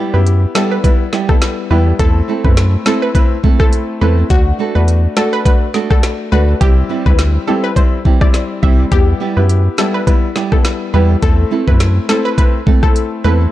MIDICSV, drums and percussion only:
0, 0, Header, 1, 2, 480
1, 0, Start_track
1, 0, Tempo, 576923
1, 1660, Time_signature, 4, 2, 24, 8
1, 11247, End_track
2, 0, Start_track
2, 0, Title_t, "Drums"
2, 221, Note_on_c, 9, 42, 70
2, 304, Note_off_c, 9, 42, 0
2, 459, Note_on_c, 9, 38, 110
2, 542, Note_off_c, 9, 38, 0
2, 699, Note_on_c, 9, 36, 93
2, 701, Note_on_c, 9, 42, 71
2, 782, Note_off_c, 9, 36, 0
2, 785, Note_off_c, 9, 42, 0
2, 937, Note_on_c, 9, 38, 67
2, 1021, Note_off_c, 9, 38, 0
2, 1073, Note_on_c, 9, 37, 86
2, 1074, Note_on_c, 9, 36, 90
2, 1156, Note_off_c, 9, 37, 0
2, 1157, Note_off_c, 9, 36, 0
2, 1179, Note_on_c, 9, 38, 105
2, 1180, Note_on_c, 9, 42, 78
2, 1262, Note_off_c, 9, 38, 0
2, 1264, Note_off_c, 9, 42, 0
2, 1659, Note_on_c, 9, 42, 71
2, 1660, Note_on_c, 9, 36, 111
2, 1743, Note_off_c, 9, 36, 0
2, 1743, Note_off_c, 9, 42, 0
2, 2034, Note_on_c, 9, 36, 96
2, 2118, Note_off_c, 9, 36, 0
2, 2140, Note_on_c, 9, 38, 105
2, 2140, Note_on_c, 9, 42, 73
2, 2223, Note_off_c, 9, 38, 0
2, 2223, Note_off_c, 9, 42, 0
2, 2379, Note_on_c, 9, 38, 107
2, 2462, Note_off_c, 9, 38, 0
2, 2619, Note_on_c, 9, 36, 88
2, 2621, Note_on_c, 9, 42, 73
2, 2702, Note_off_c, 9, 36, 0
2, 2705, Note_off_c, 9, 42, 0
2, 2860, Note_on_c, 9, 36, 94
2, 2943, Note_off_c, 9, 36, 0
2, 2992, Note_on_c, 9, 37, 88
2, 2994, Note_on_c, 9, 36, 90
2, 3075, Note_off_c, 9, 37, 0
2, 3077, Note_off_c, 9, 36, 0
2, 3100, Note_on_c, 9, 42, 75
2, 3183, Note_off_c, 9, 42, 0
2, 3579, Note_on_c, 9, 36, 118
2, 3579, Note_on_c, 9, 42, 71
2, 3662, Note_off_c, 9, 36, 0
2, 3662, Note_off_c, 9, 42, 0
2, 4060, Note_on_c, 9, 42, 72
2, 4143, Note_off_c, 9, 42, 0
2, 4299, Note_on_c, 9, 38, 105
2, 4382, Note_off_c, 9, 38, 0
2, 4539, Note_on_c, 9, 36, 90
2, 4541, Note_on_c, 9, 42, 72
2, 4622, Note_off_c, 9, 36, 0
2, 4624, Note_off_c, 9, 42, 0
2, 4778, Note_on_c, 9, 38, 70
2, 4861, Note_off_c, 9, 38, 0
2, 4912, Note_on_c, 9, 37, 86
2, 4914, Note_on_c, 9, 36, 93
2, 4996, Note_off_c, 9, 37, 0
2, 4997, Note_off_c, 9, 36, 0
2, 5019, Note_on_c, 9, 38, 103
2, 5021, Note_on_c, 9, 42, 72
2, 5102, Note_off_c, 9, 38, 0
2, 5104, Note_off_c, 9, 42, 0
2, 5499, Note_on_c, 9, 42, 70
2, 5500, Note_on_c, 9, 36, 117
2, 5582, Note_off_c, 9, 42, 0
2, 5583, Note_off_c, 9, 36, 0
2, 5874, Note_on_c, 9, 36, 91
2, 5958, Note_off_c, 9, 36, 0
2, 5980, Note_on_c, 9, 38, 106
2, 5980, Note_on_c, 9, 42, 74
2, 6063, Note_off_c, 9, 38, 0
2, 6063, Note_off_c, 9, 42, 0
2, 6459, Note_on_c, 9, 36, 86
2, 6461, Note_on_c, 9, 42, 73
2, 6542, Note_off_c, 9, 36, 0
2, 6545, Note_off_c, 9, 42, 0
2, 6700, Note_on_c, 9, 36, 90
2, 6783, Note_off_c, 9, 36, 0
2, 6832, Note_on_c, 9, 37, 82
2, 6833, Note_on_c, 9, 36, 92
2, 6915, Note_off_c, 9, 37, 0
2, 6916, Note_off_c, 9, 36, 0
2, 6938, Note_on_c, 9, 38, 63
2, 6940, Note_on_c, 9, 42, 75
2, 7021, Note_off_c, 9, 38, 0
2, 7023, Note_off_c, 9, 42, 0
2, 7179, Note_on_c, 9, 36, 101
2, 7262, Note_off_c, 9, 36, 0
2, 7419, Note_on_c, 9, 36, 113
2, 7419, Note_on_c, 9, 42, 67
2, 7502, Note_off_c, 9, 36, 0
2, 7502, Note_off_c, 9, 42, 0
2, 7900, Note_on_c, 9, 42, 71
2, 7983, Note_off_c, 9, 42, 0
2, 8138, Note_on_c, 9, 38, 106
2, 8222, Note_off_c, 9, 38, 0
2, 8379, Note_on_c, 9, 36, 89
2, 8381, Note_on_c, 9, 42, 70
2, 8462, Note_off_c, 9, 36, 0
2, 8465, Note_off_c, 9, 42, 0
2, 8617, Note_on_c, 9, 38, 68
2, 8700, Note_off_c, 9, 38, 0
2, 8752, Note_on_c, 9, 37, 83
2, 8753, Note_on_c, 9, 36, 90
2, 8835, Note_off_c, 9, 37, 0
2, 8837, Note_off_c, 9, 36, 0
2, 8858, Note_on_c, 9, 38, 103
2, 8860, Note_on_c, 9, 42, 73
2, 8942, Note_off_c, 9, 38, 0
2, 8943, Note_off_c, 9, 42, 0
2, 9339, Note_on_c, 9, 36, 116
2, 9339, Note_on_c, 9, 42, 69
2, 9422, Note_off_c, 9, 42, 0
2, 9423, Note_off_c, 9, 36, 0
2, 9714, Note_on_c, 9, 36, 93
2, 9798, Note_off_c, 9, 36, 0
2, 9820, Note_on_c, 9, 38, 109
2, 9820, Note_on_c, 9, 42, 71
2, 9903, Note_off_c, 9, 38, 0
2, 9903, Note_off_c, 9, 42, 0
2, 10059, Note_on_c, 9, 38, 103
2, 10142, Note_off_c, 9, 38, 0
2, 10299, Note_on_c, 9, 36, 93
2, 10301, Note_on_c, 9, 42, 74
2, 10382, Note_off_c, 9, 36, 0
2, 10385, Note_off_c, 9, 42, 0
2, 10540, Note_on_c, 9, 36, 92
2, 10623, Note_off_c, 9, 36, 0
2, 10672, Note_on_c, 9, 37, 86
2, 10674, Note_on_c, 9, 36, 89
2, 10756, Note_off_c, 9, 37, 0
2, 10757, Note_off_c, 9, 36, 0
2, 10781, Note_on_c, 9, 42, 75
2, 10864, Note_off_c, 9, 42, 0
2, 11247, End_track
0, 0, End_of_file